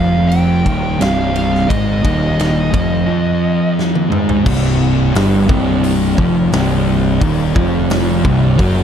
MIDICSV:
0, 0, Header, 1, 5, 480
1, 0, Start_track
1, 0, Key_signature, -3, "minor"
1, 0, Tempo, 690449
1, 1178, Time_signature, 4, 2, 24, 8
1, 6141, End_track
2, 0, Start_track
2, 0, Title_t, "Lead electric guitar"
2, 0, Program_c, 0, 29
2, 0, Note_on_c, 0, 77, 98
2, 191, Note_off_c, 0, 77, 0
2, 200, Note_on_c, 0, 79, 101
2, 703, Note_off_c, 0, 79, 0
2, 708, Note_on_c, 0, 77, 101
2, 943, Note_off_c, 0, 77, 0
2, 951, Note_on_c, 0, 77, 87
2, 1169, Note_off_c, 0, 77, 0
2, 1174, Note_on_c, 0, 75, 95
2, 2592, Note_off_c, 0, 75, 0
2, 6141, End_track
3, 0, Start_track
3, 0, Title_t, "Distorted electric guitar"
3, 0, Program_c, 1, 30
3, 0, Note_on_c, 1, 41, 90
3, 0, Note_on_c, 1, 53, 104
3, 438, Note_off_c, 1, 41, 0
3, 440, Note_on_c, 1, 39, 91
3, 445, Note_off_c, 1, 53, 0
3, 450, Note_on_c, 1, 51, 99
3, 681, Note_off_c, 1, 39, 0
3, 685, Note_off_c, 1, 51, 0
3, 685, Note_on_c, 1, 36, 85
3, 688, Note_on_c, 1, 48, 100
3, 1165, Note_off_c, 1, 36, 0
3, 1167, Note_off_c, 1, 48, 0
3, 1170, Note_on_c, 1, 44, 102
3, 1175, Note_on_c, 1, 56, 102
3, 1407, Note_off_c, 1, 44, 0
3, 1409, Note_off_c, 1, 56, 0
3, 1410, Note_on_c, 1, 39, 97
3, 1412, Note_on_c, 1, 51, 89
3, 1885, Note_off_c, 1, 39, 0
3, 1888, Note_on_c, 1, 41, 92
3, 1889, Note_off_c, 1, 51, 0
3, 1895, Note_on_c, 1, 53, 100
3, 2118, Note_off_c, 1, 41, 0
3, 2125, Note_off_c, 1, 53, 0
3, 2127, Note_on_c, 1, 41, 89
3, 2133, Note_on_c, 1, 53, 104
3, 2839, Note_off_c, 1, 41, 0
3, 2842, Note_on_c, 1, 44, 85
3, 2847, Note_off_c, 1, 53, 0
3, 2849, Note_on_c, 1, 56, 108
3, 3084, Note_off_c, 1, 44, 0
3, 3088, Note_off_c, 1, 56, 0
3, 3088, Note_on_c, 1, 36, 102
3, 3095, Note_on_c, 1, 48, 105
3, 3567, Note_off_c, 1, 36, 0
3, 3571, Note_off_c, 1, 48, 0
3, 3572, Note_on_c, 1, 43, 107
3, 3581, Note_on_c, 1, 55, 107
3, 3805, Note_off_c, 1, 43, 0
3, 3807, Note_on_c, 1, 36, 98
3, 3811, Note_off_c, 1, 55, 0
3, 3813, Note_on_c, 1, 48, 98
3, 4285, Note_off_c, 1, 36, 0
3, 4288, Note_off_c, 1, 48, 0
3, 4295, Note_on_c, 1, 41, 86
3, 4299, Note_on_c, 1, 53, 101
3, 4529, Note_off_c, 1, 41, 0
3, 4531, Note_off_c, 1, 53, 0
3, 4531, Note_on_c, 1, 36, 97
3, 4538, Note_on_c, 1, 48, 108
3, 5005, Note_off_c, 1, 36, 0
3, 5008, Note_off_c, 1, 48, 0
3, 5014, Note_on_c, 1, 39, 108
3, 5021, Note_on_c, 1, 51, 120
3, 5258, Note_off_c, 1, 39, 0
3, 5258, Note_on_c, 1, 41, 94
3, 5265, Note_off_c, 1, 51, 0
3, 5265, Note_on_c, 1, 53, 102
3, 5726, Note_off_c, 1, 41, 0
3, 5729, Note_off_c, 1, 53, 0
3, 5730, Note_on_c, 1, 36, 96
3, 5741, Note_on_c, 1, 48, 100
3, 5962, Note_off_c, 1, 36, 0
3, 5965, Note_on_c, 1, 42, 102
3, 5967, Note_off_c, 1, 48, 0
3, 5975, Note_on_c, 1, 54, 100
3, 6141, Note_off_c, 1, 42, 0
3, 6141, Note_off_c, 1, 54, 0
3, 6141, End_track
4, 0, Start_track
4, 0, Title_t, "Picked electric bass"
4, 0, Program_c, 2, 34
4, 0, Note_on_c, 2, 29, 88
4, 427, Note_off_c, 2, 29, 0
4, 461, Note_on_c, 2, 27, 100
4, 682, Note_off_c, 2, 27, 0
4, 702, Note_on_c, 2, 24, 108
4, 1153, Note_off_c, 2, 24, 0
4, 1184, Note_on_c, 2, 32, 99
4, 1405, Note_off_c, 2, 32, 0
4, 1423, Note_on_c, 2, 27, 91
4, 1874, Note_off_c, 2, 27, 0
4, 1904, Note_on_c, 2, 29, 90
4, 2126, Note_off_c, 2, 29, 0
4, 3103, Note_on_c, 2, 24, 99
4, 3554, Note_off_c, 2, 24, 0
4, 3584, Note_on_c, 2, 31, 100
4, 3805, Note_off_c, 2, 31, 0
4, 3820, Note_on_c, 2, 24, 87
4, 4271, Note_off_c, 2, 24, 0
4, 4297, Note_on_c, 2, 29, 107
4, 4520, Note_off_c, 2, 29, 0
4, 4541, Note_on_c, 2, 24, 101
4, 4989, Note_off_c, 2, 24, 0
4, 5016, Note_on_c, 2, 27, 102
4, 5238, Note_off_c, 2, 27, 0
4, 5256, Note_on_c, 2, 29, 95
4, 5704, Note_off_c, 2, 29, 0
4, 5735, Note_on_c, 2, 24, 89
4, 5955, Note_off_c, 2, 24, 0
4, 5972, Note_on_c, 2, 30, 105
4, 6141, Note_off_c, 2, 30, 0
4, 6141, End_track
5, 0, Start_track
5, 0, Title_t, "Drums"
5, 219, Note_on_c, 9, 51, 83
5, 288, Note_off_c, 9, 51, 0
5, 459, Note_on_c, 9, 36, 99
5, 461, Note_on_c, 9, 51, 65
5, 528, Note_off_c, 9, 36, 0
5, 530, Note_off_c, 9, 51, 0
5, 701, Note_on_c, 9, 51, 99
5, 711, Note_on_c, 9, 38, 110
5, 770, Note_off_c, 9, 51, 0
5, 780, Note_off_c, 9, 38, 0
5, 942, Note_on_c, 9, 51, 75
5, 1012, Note_off_c, 9, 51, 0
5, 1077, Note_on_c, 9, 38, 34
5, 1147, Note_off_c, 9, 38, 0
5, 1184, Note_on_c, 9, 36, 107
5, 1188, Note_on_c, 9, 51, 98
5, 1253, Note_off_c, 9, 36, 0
5, 1257, Note_off_c, 9, 51, 0
5, 1422, Note_on_c, 9, 36, 110
5, 1423, Note_on_c, 9, 51, 72
5, 1492, Note_off_c, 9, 36, 0
5, 1493, Note_off_c, 9, 51, 0
5, 1665, Note_on_c, 9, 51, 99
5, 1674, Note_on_c, 9, 38, 116
5, 1734, Note_off_c, 9, 51, 0
5, 1744, Note_off_c, 9, 38, 0
5, 1903, Note_on_c, 9, 36, 108
5, 1906, Note_on_c, 9, 51, 70
5, 1973, Note_off_c, 9, 36, 0
5, 1975, Note_off_c, 9, 51, 0
5, 2637, Note_on_c, 9, 38, 62
5, 2706, Note_off_c, 9, 38, 0
5, 2749, Note_on_c, 9, 48, 63
5, 2819, Note_off_c, 9, 48, 0
5, 2864, Note_on_c, 9, 45, 90
5, 2934, Note_off_c, 9, 45, 0
5, 2984, Note_on_c, 9, 43, 89
5, 3053, Note_off_c, 9, 43, 0
5, 3102, Note_on_c, 9, 36, 110
5, 3103, Note_on_c, 9, 49, 120
5, 3171, Note_off_c, 9, 36, 0
5, 3172, Note_off_c, 9, 49, 0
5, 3581, Note_on_c, 9, 46, 70
5, 3590, Note_on_c, 9, 38, 120
5, 3650, Note_off_c, 9, 46, 0
5, 3660, Note_off_c, 9, 38, 0
5, 3819, Note_on_c, 9, 36, 116
5, 3888, Note_off_c, 9, 36, 0
5, 4057, Note_on_c, 9, 46, 68
5, 4126, Note_off_c, 9, 46, 0
5, 4298, Note_on_c, 9, 36, 100
5, 4367, Note_off_c, 9, 36, 0
5, 4535, Note_on_c, 9, 46, 74
5, 4544, Note_on_c, 9, 38, 127
5, 4604, Note_off_c, 9, 46, 0
5, 4614, Note_off_c, 9, 38, 0
5, 5016, Note_on_c, 9, 36, 112
5, 5017, Note_on_c, 9, 46, 73
5, 5085, Note_off_c, 9, 36, 0
5, 5086, Note_off_c, 9, 46, 0
5, 5255, Note_on_c, 9, 36, 116
5, 5325, Note_off_c, 9, 36, 0
5, 5491, Note_on_c, 9, 46, 68
5, 5501, Note_on_c, 9, 38, 121
5, 5561, Note_off_c, 9, 46, 0
5, 5570, Note_off_c, 9, 38, 0
5, 5734, Note_on_c, 9, 36, 108
5, 5804, Note_off_c, 9, 36, 0
5, 5973, Note_on_c, 9, 36, 109
5, 5976, Note_on_c, 9, 46, 72
5, 6042, Note_off_c, 9, 36, 0
5, 6046, Note_off_c, 9, 46, 0
5, 6141, End_track
0, 0, End_of_file